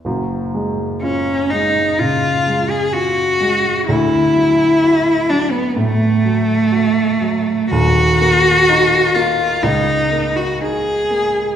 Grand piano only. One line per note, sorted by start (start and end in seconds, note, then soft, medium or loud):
0.05 1.95 F#1 medium
0.05 1.95 F#2 medium
0.54 1.31 G#3 medium
1.03 1.80 F4 medium
1.53 2.29 G#3 medium
2.00 2.75 C#3 medium
2.47 3.21 G#3 soft
2.94 3.69 F4 medium
3.40 3.87 G#3 medium
3.89 5.73 D2 medium
4.36 5.11 F#3 soft
4.83 5.58 F#4 medium
5.30 6.04 F#3 medium
5.76 6.51 A2 medium
6.25 7.01 F#3 medium
6.72 7.52 F#4 medium
7.21 7.72 F#3 medium
7.72 9.59 D#1 medium
7.72 9.59 D#2 medium
8.21 8.96 A#3 medium
8.69 9.44 D#4 medium
9.15 9.63 A#3 medium
9.63 11.56 C#2 medium
10.12 10.90 A#3 soft
10.61 11.41 D#4 soft
11.10 11.56 A#3 soft